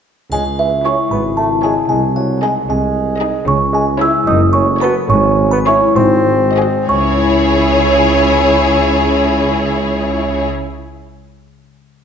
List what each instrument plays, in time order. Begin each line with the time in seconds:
0.31 double bass section C#2, tuba C#2, cello section C#3, harp C#3, bassoon G#3, music box G#5, triangle
0.58 bassoon E3, harp G#3, music box E5
0.85 bassoon C#4, viola section E4, harp E4, violin section G#4 C#5, music box C#6
1.10 double bass section G#1, tuba G#1, cello section G#2, bassoon B3, harp G#4, music box B5
1.37 bassoon A3, harp E4, music box A5
1.63 bassoon G#3, viola section E4, harp G#4, violin section G#4 C#5, music box G#5
1.89 tuba C2, double bass section C2, harp C3, cello section C3, bassoon G#3, music box G#5
2.15 bassoon F#3, harp G#3, music box F#5
2.42 bassoon G#3, harp D#4, viola section D#4, violin section G#4 D#5, music box G#5
2.68 tuba C2, double bass section C2, cello section C3, bassoon G#3, harp G#4, music box G#5
2.95 harp D#4
3.19 viola section D#4, violin section G#4 D#5, harp G#4
3.46 double bass section C#2, tuba C#2, cello section C#3, harp C#3, bassoon C#4, music box C#6
3.73 bassoon G#3, harp G#3, music box G#5
4.00 harp E4 G#4, bassoon E4, viola section E4, violin section G#4 C#5, music box E6
4.27 tuba F#1, double bass section F#1, harp F#2, cello section F#2, bassoon D#4, music box D#6
4.53 harp A3, bassoon C#4, music box C#6
4.80 bassoon B3, harp C#4 F#4, viola section F#4, violin section A4 C#5, music box B5
5.09 double bass section G#1, tuba G#1, harp G#2, cello section G#2, bassoon C#4, music box C#6
5.37 harp G#3
5.51 bassoon B3, music box B5
5.66 bassoon C#4, harp C#4 E4, viola section E4, violin section G#4 C#5, music box C#6
5.96 tuba G#1, double bass section G#1, harp G#2, cello section G#2, bassoon C4, music box C6
6.26 harp G#3
6.55 harp D#4 F#4, viola section F#4, violin section G#4 D#5
6.86 double bass section C#2, tuba C#2, cello section C#3, harp C#3, bassoon C#4, viola section E4, violin section G#4 C#5, music box C#6
6.95 harp G#3
7.02 harp C#4
7.09 harp E4
7.16 harp G#4
7.23 harp E5